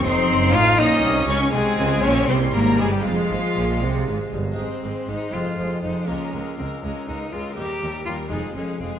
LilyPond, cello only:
\new Staff \with { instrumentName = "Cello" } { \time 6/8 \key f \minor \tempo 4. = 81 c'4 f'8 ees'4 des'8 | aes4 des'8 c'8 bes8 aes16 g16 | f2~ f8 r8 | \key aes \major c'4 ees'8 f'4 ees'8 |
des'4 c'8 des'8 ees'8 f'8 | g'4 f'8 ees'8 des'8 c'8 | }